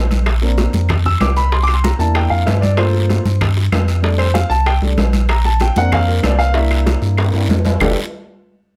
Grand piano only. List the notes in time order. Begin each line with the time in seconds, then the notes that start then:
Already playing: G3 A3 D4
0.42 A#3 C4 D4
1.06 E6
1.21 D6
1.37 B5
1.53 C6
1.63 D6
1.74 C6
1.84 A#5
1.98 A#3 D4 E4 A5
2.15 G5
2.30 F5
2.46 E5
2.61 D5
2.77 A3 A#3 F4 C5
4.02 G3 A3 D4
4.18 C5
4.34 F5
4.50 A5
4.66 G5
4.82 G3 A3 D4
5.29 A#5
5.45 A5
5.61 G5
5.77 A#3 C4 D4 F#5
5.93 F5
6.08 A#4
6.24 D5
6.39 F5
6.54 A#3 D4 E4 E5
7.34 A#3 D4 E4
7.81 D4 G4 A4